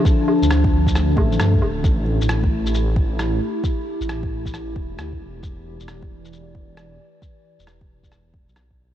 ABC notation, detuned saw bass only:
X:1
M:4/4
L:1/16
Q:"Swing 16ths" 1/4=134
K:Ephr
V:1 name="Detuned saw bass" clef=bass
z3 D,,3 D,,4 A,,,2 G,,2 D,,,2 | A,,,3 A,,,3 A,,,8 z2 | z3 A,,,3 A,,,4 E,,,2 D,,2 E,,,2 | E,,,3 E,,,3 E,,,8 z2 |
z3 E,,,3 E,,,4 E,,, B,,,4 z |]